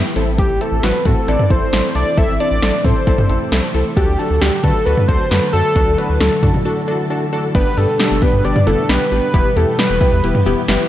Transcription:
Already playing: E3 G3 B3 G4 B4
0.16 A1 C3 A3 C4 E4 A4, closed hi-hat
0.38 G4, kick, closed hi-hat
0.49 A1
0.61 C4 E4 A4, closed hi-hat
0.72 A1
0.83 A1 C4 E4 F#4 B4, snare, closed hi-hat
1.05 A2 C4 E4 F#4 A4, kick, closed hi-hat
1.28 A1 C4 E4 A4 D5, closed hi-hat
1.39 mid tom
1.50 A1 C4 E4 A4 C5, kick, closed hi-hat
1.73 A1 C4 E4 A4, snare, closed hi-hat
1.95 C2 C4 E4 A4 D5, closed hi-hat
2.17 A1 C4 E4 A4 E5, kick, closed hi-hat
2.28 A1
2.40 C4 E4 A4 D5, closed hi-hat
2.51 A1
2.62 A1 C4 E4 A4, snare, closed hi-hat
2.84 A2 C4 E4 A4 C5, kick, closed hi-hat
3.07 A1 C4 E4 A4, kick, closed hi-hat
3.18 mid tom
3.29 A1 C4 E4 A4, closed hi-hat
3.52 C2 C4 E4 A4, snare, closed hi-hat
3.74 C2 C4 E4 A4, closed hi-hat
3.97 D2 D3 F#3 D4 F#4 G4 A4, kick, closed hi-hat
4.08 D2
4.19 D4 F#4 A4, closed hi-hat
4.30 D2
4.41 D2 D4 F#4 G4 A4, snare, closed hi-hat
4.63 D3 D4 F#4 A4 B4, kick, closed hi-hat
4.85 D2 D4 F#4 A4 B4, closed hi-hat
4.97 mid tom
5.08 D2 D4 F#4 A4 C5, kick, closed hi-hat
5.30 F#2 D4 F#4 A4 B4, snare, closed hi-hat
5.53 F#2 D4 F#4 A4, closed hi-hat
5.76 D2 D4 E4 F#4 A4, kick, closed hi-hat
5.87 D2
5.98 D4 F#4 A4 B4, closed hi-hat
6.09 D2
6.20 D2 D4 F#4 A4, snare, closed hi-hat
6.43 D3 D4 F#4 A4, kick, closed hi-hat, mid tom
6.54 mid tom
6.65 D4 F#4 A4
6.88 D4 F#4 A4
7.10 D4 F#4 A4
7.33 D4 F#4 A4
7.55 G1 B2 D3 G3 B3 D4 G4 B4, kick, closed hi-hat, crash
7.77 G2 B3 D4 G4 A4, closed hi-hat
8.00 B3 D4 G4, snare, closed hi-hat
8.11 G1
8.22 B3 D4 G4 B4, kick, closed hi-hat
8.33 G2
8.44 G1 B3 D4 G4 D5, closed hi-hat
8.56 mid tom
8.67 G1 B3 D4 E4 A4, closed hi-hat
8.89 B1 B3 D4 G4 B4, snare, closed hi-hat
9.12 A1 B3 D4 G4 B4, closed hi-hat
9.34 E1 E3 B3 E4 G4, kick, closed hi-hat
9.56 E2 B3 E4 G4 A4, closed hi-hat
9.79 B3 E4 G4 B4, snare, closed hi-hat
9.90 E1
10.01 B3 E4 G4, kick, closed hi-hat
10.12 E2
10.23 E1 B3 E4 G4, closed hi-hat
10.35 mid tom
10.46 E1 B3 E4 G4, closed hi-hat
10.68 G1 B3 E4 G4, snare, closed hi-hat

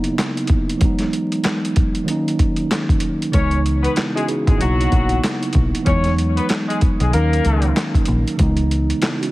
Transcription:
Already playing: C#3 F#3 A#3 B3 D#4
0.04 closed hi-hat
0.18 finger snap, snare, clap, closed hi-hat
0.37 closed hi-hat
0.47 kick, closed hi-hat
0.70 closed hi-hat
0.78 E3 F#3 G#3, kick, closed hi-hat
0.83 B3 D#4
0.99 snare, closed hi-hat
1.13 closed hi-hat
1.32 closed hi-hat
1.44 finger snap, snare, clap, closed hi-hat
1.65 closed hi-hat
1.76 kick, closed hi-hat
1.95 closed hi-hat
2.04 D#3 F#3 A#3
2.08 C#4 D#4, closed hi-hat
2.28 closed hi-hat
2.39 kick, closed hi-hat
2.56 closed hi-hat
2.71 finger snap, snare, clap, closed hi-hat
2.89 kick, closed hi-hat
3.00 closed hi-hat
3.22 closed hi-hat
3.30 C#3 E3 G#3 C#4 C#5, closed hi-hat
3.34 C#2 B3 D#4, kick
3.51 closed hi-hat
3.66 closed hi-hat
3.83 B3 B4, closed hi-hat
3.96 B3 E4, finger snap, snare, clap, closed hi-hat
4.15 G#3 C#4 F#4 G#4, closed hi-hat
4.28 D#4 G#4, closed hi-hat
4.47 G#1 G#3 B3 E4 G#4, kick, closed hi-hat
4.57 C#3 F#3 A#3
4.61 B1 F#3 B3 D#4 F#4, closed hi-hat
4.81 closed hi-hat
4.92 A#1, kick, closed hi-hat
5.09 closed hi-hat
5.24 finger snap, snare, clap, closed hi-hat
5.43 closed hi-hat
5.53 B1, kick, closed hi-hat
5.75 closed hi-hat
5.83 E3 F#3 G#3 C#4 C#5, kick, closed hi-hat
5.87 E2 B3 D#4
6.04 snare, closed hi-hat
6.18 closed hi-hat
6.37 B3 B4, closed hi-hat
6.49 finger snap, snare, clap, closed hi-hat
6.68 G#3 G#4, closed hi-hat
6.81 kick, closed hi-hat
7.00 B1 G#3 G#4, closed hi-hat
7.09 D#3 F#3 A#3 A#4
7.13 D#2 C#4 D#4, closed hi-hat
7.33 closed hi-hat
7.45 C#2, closed hi-hat
7.62 closed hi-hat
7.76 finger snap, snare, clap, closed hi-hat
7.95 kick, closed hi-hat
8.05 A#1, closed hi-hat
8.28 closed hi-hat
8.35 C#3 E3 G#3, closed hi-hat
8.39 C#2 B3 D#4, kick
8.57 closed hi-hat
8.71 closed hi-hat
8.90 closed hi-hat
9.02 B3 E4, finger snap, snare, clap, closed hi-hat
9.21 C#4 F#4, closed hi-hat

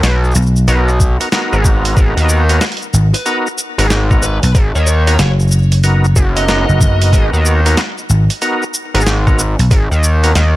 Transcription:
0.03 B1, snare, closed hi-hat, shaker
0.24 shaker
0.31 shaker
0.35 B1, shaker
0.42 shaker
0.46 shaker
0.56 shaker
0.68 B1 B3 D#4 F#4 A#4, closed hi-hat, shaker
0.88 cross-stick, shaker
1.00 kick, shaker
1.20 B3 D#4 F#4 A#4, closed hi-hat, shaker
1.32 B3 D#4 F#4 A#4, snare, closed hi-hat, shaker
1.53 G#1, shaker
1.65 kick, cross-stick, shaker
1.85 closed hi-hat, shaker
1.97 G#1, kick, shaker
2.17 D#2, closed hi-hat, shaker
2.29 shaker
2.49 B3 D#4 F#4 A#4, closed hi-hat, shaker
2.61 snare, closed hi-hat, shaker
2.66 closed hi-hat
2.72 closed hi-hat
2.77 closed hi-hat
2.82 shaker
2.93 G#1, shaker
3.14 B4, closed hi-hat, shaker
3.26 B3 D#4 F#4 A#4, closed hi-hat, shaker
3.47 shaker
3.58 shaker
3.78 G#1 B3 D#4 F#4 A#4, closed hi-hat, shaker
3.90 snare, closed hi-hat, shaker
4.11 B3 D#4 F#4 A#4, kick, cross-stick, shaker
4.23 B4, shaker
4.43 B1 B4, closed hi-hat, shaker
4.55 G#1, kick, closed hi-hat, shaker
4.75 D#2 C#5, shaker
4.87 C#5, shaker
5.07 B3 D#4 F#4 A#4 C#5, closed hi-hat, shaker
5.19 F#1, snare, closed hi-hat, shaker
5.40 shaker
5.48 shaker
5.51 shaker
5.58 shaker
5.62 shaker
5.72 closed hi-hat, shaker
5.84 B3 D#4 F#4 A#4, closed hi-hat, shaker
6.04 shaker
6.16 F#1, kick, shaker
6.36 B3 D#4 F#4 A#4 D#5, closed hi-hat, shaker
6.48 B3 D#4 F#4 A#4, snare, closed hi-hat, shaker
6.69 F#1, shaker
6.81 F#1, kick, cross-stick, shaker
7.02 closed hi-hat, shaker
7.13 G#1, kick, closed hi-hat, shaker
7.33 D#2, shaker
7.45 shaker
7.66 B3 D#4 F#4 A#4, closed hi-hat, shaker
7.77 snare, closed hi-hat, shaker
7.98 shaker
8.10 G#1, shaker
8.30 closed hi-hat, shaker
8.42 B3 D#4 F#4 A#4, closed hi-hat, shaker
8.62 shaker
8.74 shaker
8.95 G#1 B3 D#4 F#4 A#4, closed hi-hat
9.01 shaker
9.07 snare, closed hi-hat, shaker
9.27 B3 D#4 F#4 A#4, kick, cross-stick, shaker
9.39 shaker
9.59 B1, closed hi-hat, shaker
9.71 G#1, kick, closed hi-hat, shaker
9.91 D#2, shaker
10.03 shaker
10.24 B3 D#4 F#4 A#4, closed hi-hat, shaker
10.35 D#2, snare, closed hi-hat, shaker

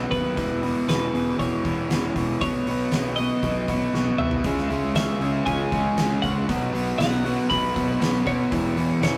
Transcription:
Already playing: F#3 B3 E4 F#5
0.11 D#2 B2 F#3 B3 B4, kick, open hi-hat
0.36 E1 E2 B2 E3, kick, open hi-hat
0.62 E2 B2 E3 B3, open hi-hat
0.88 E1 E2 B2 E3 C#4 B4, snare, open hi-hat
1.12 E1 E2 B2 E3 G#4, open hi-hat
1.37 E1 E2 B2 E3 C#4 C#5, kick, open hi-hat
1.64 E1 E2 B2 E3 B3, kick, open hi-hat
1.88 E1 E2 B2 E3 G#4, snare, open hi-hat
2.15 E1 E2 B2 E3 C#4, kick, open hi-hat
2.41 B1 B2 F#3 B3 C#5, kick, open hi-hat
2.67 B1 B2 F#3 B3, open hi-hat
2.91 B1 B2 F#3 B3 E4, snare, open hi-hat
3.16 B2 F#3 B3 F#4 D#5, open hi-hat
3.42 B1 B2 F#3 B3 E4, kick, open hi-hat
3.68 B1 B2 F#3 B3, kick, open hi-hat
3.93 B1 B2 F#3 B3 F#4, snare
4.06 high tom
4.18 C2 B2 F#3 B3 E4 E5, mid tom
4.31 floor tom
4.44 C#2 C#3 G#3 C#4, kick, open hi-hat
4.58 snare
4.70 C#3 G#3 C#4, open hi-hat
4.94 C#2 C#3 G#3 C#4 E5, snare, open hi-hat
5.20 C#2 C#3 G#3 C#4 G#4, open hi-hat
5.46 C#2 C#3 G#3 C#4 G#5, kick, open hi-hat
5.72 C#2 C#3 G#3 C#4, kick, open hi-hat
5.96 C#2 C#3 G#3 C#4 G#4, snare, open hi-hat
6.22 C#2 C#3 G#3 C#4 F#5, kick, open hi-hat
6.48 B1 B2 F#3 B3, kick, open hi-hat
6.73 B1 B2 F#3 B3, open hi-hat
6.98 B1 B2 F#3 B3 E4 F#5, snare, open hi-hat
7.24 B2 F#3 B3 F#4, open hi-hat
7.50 B1 B2 F#3 B3 E4 B5, kick, open hi-hat
7.74 B1 B2 F#3 B3, kick, open hi-hat
8.00 B1 B2 F#3 B3 F#4, snare, open hi-hat
8.26 B2 F#3 B3 E4 C#5, kick, open hi-hat
8.51 E1 E2 B2 E3, kick, open hi-hat
8.77 E2 B2 E3 B3, open hi-hat
9.00 E1 E2 B2 E3 C#4 C#5, snare, open hi-hat

